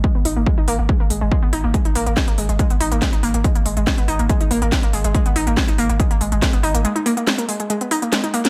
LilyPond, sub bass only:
\new Staff \with { instrumentName = "Sub bass" } { \clef bass \time 4/4 \key gis \minor \tempo 4 = 141 r16 gis,,16 gis,,16 gis,,16 r16 gis,,16 gis,,16 gis,,16 r16 gis,,16 gis,,16 gis,,16 r16 gis,,16 gis,,16 gis,,16 | r16 gis,,16 gis,,16 gis,,16 r16 gis,,16 gis,,16 gis,,16 r16 gis,,16 gis,,16 gis,,16 r16 gis,,16 gis,,16 gis,,16 | r16 gis,,16 gis,,16 gis,,16 r16 gis,,16 gis,,16 gis,,16 r16 gis,,16 gis,,16 gis,,16 r16 gis,,16 gis,,16 gis,,16 | r16 gis,,16 gis,,16 gis,,16 r16 gis,,16 gis,,16 gis,,16 r16 gis,,16 gis,,16 gis,,16 r16 gis,,16 gis,,16 gis,,16 |
r1 | }